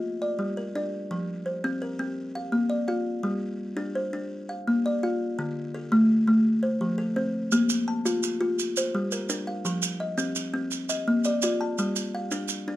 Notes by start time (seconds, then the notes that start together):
Already playing: D#5
0.22 D5
0.39 G3
0.57 A#4
0.75 D4 D5
1.11 F3
1.46 C5
1.64 C4
1.82 A#4
1.99 C4
2.35 F5
2.52 A#3
2.70 D5
2.88 F4 F5
3.23 G3
3.77 D4
3.95 C5
4.13 D4
4.49 F5
4.67 A#3
4.86 D5
5.03 F4 F5
5.39 D3
5.74 A4
5.92 A3
6.27 A3
6.63 C5
6.81 F3
6.98 A4
7.16 C4 C5
7.52 A#3, maracas
7.69 maracas
7.88 A5
8.05 F4, maracas
8.23 maracas
8.41 F4
8.59 maracas
8.77 C5, maracas
8.95 G3
9.12 A#4, maracas
9.29 D4 A#4, maracas
9.47 F5
9.65 F3, maracas
9.82 maracas
10.00 D#5
10.18 C4, maracas
10.36 maracas
10.54 C4
10.71 maracas
10.89 D#5, maracas
11.08 A#3
11.24 D5, maracas
11.42 F4 D5, maracas
11.61 A5
11.78 G3, maracas
11.96 maracas
12.15 F5
12.31 D4, maracas
12.48 maracas
12.68 D4